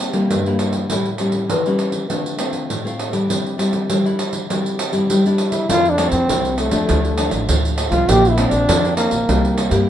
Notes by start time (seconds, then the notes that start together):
Already playing: C3
0.00 pandeiro
0.13 G3 A#3 E4, pandeiro
0.30 G2, pandeiro
0.46 G3 A#3 E4, pandeiro
0.59 pandeiro
0.73 pandeiro
0.90 A2 G3 C#4 E4, pandeiro
1.05 pandeiro
1.18 G3 C#4 E4, pandeiro
1.32 pandeiro
1.50 E3, pandeiro
1.66 G3 C#4 E4, pandeiro
1.79 pandeiro
1.92 pandeiro
2.10 D3 A3 C4 F4, pandeiro
2.26 pandeiro
2.39 A3 C4 F4, pandeiro
2.53 pandeiro
2.70 A2, pandeiro
2.85 A3 C4 F4, pandeiro
2.99 pandeiro
3.12 G3 D4 E4, pandeiro
3.30 C3, pandeiro
3.46 pandeiro
3.58 G3 D4 E4, pandeiro
3.73 pandeiro
3.90 G3, pandeiro
4.05 G3 D4 E4, pandeiro
4.19 pandeiro
4.33 pandeiro
4.49 C3 G3 D4 E4, pandeiro
4.66 pandeiro
4.79 pandeiro
4.92 G3 D4 E4, pandeiro
5.10 G3, pandeiro
5.26 G3 D4 E4, pandeiro
5.38 pandeiro
5.50 E4, pandeiro
5.69 F2 F3 A3 C4 E4 F4, pandeiro
5.85 pandeiro
5.90 D4
5.98 A3 C4 E4, pandeiro
6.10 F2 C4, pandeiro
6.29 C2 C3 A3 C4 E4, pandeiro
6.45 pandeiro
6.58 A3, pandeiro
6.71 E2 F3 A3 D4, pandeiro
6.89 D2 D3, pandeiro
7.05 pandeiro
7.18 F3 A3 D4, pandeiro
7.31 A1, pandeiro
7.49 D2 A2 F3 A3 D4, pandeiro
7.65 pandeiro
7.78 pandeiro
7.90 C2 F3 C4 D4 F4, pandeiro
8.08 A#1 A#2 G4, pandeiro
8.25 pandeiro
8.30 E4
8.38 F3 C4 D4, pandeiro
8.49 A#1 D4, pandeiro
8.68 F2 F3, pandeiro
8.85 F3 C4 D4, pandeiro
8.97 A#3, pandeiro
9.11 A#1, pandeiro
9.28 C2 C3 G3 A#3 E4, pandeiro
9.45 pandeiro
9.58 pandeiro
9.71 G2 G3 A#3 E4, pandeiro